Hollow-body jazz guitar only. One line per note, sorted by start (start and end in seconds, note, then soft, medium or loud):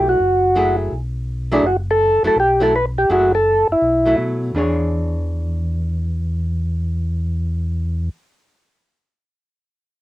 0.00 0.17 F#3 medium
0.00 0.18 A3 medium
0.00 0.18 E4 medium
0.55 0.92 F#3 soft
0.55 0.92 A3 soft
0.55 0.92 E4 medium
0.55 0.92 G#4 medium
1.52 1.63 F#3 medium
1.52 1.64 A3 medium
1.52 1.64 E4 medium
1.52 1.64 G#4 medium
2.24 2.36 F#3 medium
2.24 2.36 A3 medium
2.24 2.36 E4 medium
2.60 2.72 F#3 medium
2.60 2.72 A3 medium
2.60 2.73 E4 medium
3.10 3.30 F#3 medium
3.10 3.31 A3 medium
3.10 3.31 E4 medium
3.10 3.31 G#4 medium
4.05 4.52 F#3 soft
4.05 4.52 A3 medium
4.05 4.53 E4 medium
4.55 8.15 E3 medium
4.55 8.16 D4 medium
4.55 8.17 G#4 medium
4.55 8.18 C#5 medium